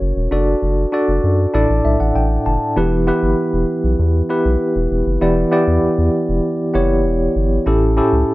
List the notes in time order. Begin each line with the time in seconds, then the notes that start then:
Already playing: C#4 F#4 A#4 C#5
0.01 F#1
0.16 E1
0.31 F#1 D4 F#4 A4 D5
0.62 F#1
0.92 D4 F#4 A4 D5
1.08 F#1
1.24 F#2
1.53 A1 A2 D4 E4 A4 D5
1.70 A1
1.85 B1 E5
2.00 A1 F#5
2.16 A1 G5
2.46 F#1 A5
2.76 E1 E3 B3 E4 G4 B4
3.07 B3 E4 G4 B4
3.23 G1
3.53 E1
3.84 B1
3.99 E2
4.29 B3 E4 G4 B4
4.45 B1
4.76 E1
4.91 E1
5.07 F#1
5.21 E1 E3 B3 E4 G4 D5
5.51 B3 E4 G4 D5
5.68 E2
5.83 E2
5.98 E2
6.29 E1
6.74 F#1 B3 E4 G4 C#5
7.05 E1
7.36 G1
7.66 A1 A2 C#4 E4 G4 A4
7.97 C#4 E4 G4 A4
8.13 C#2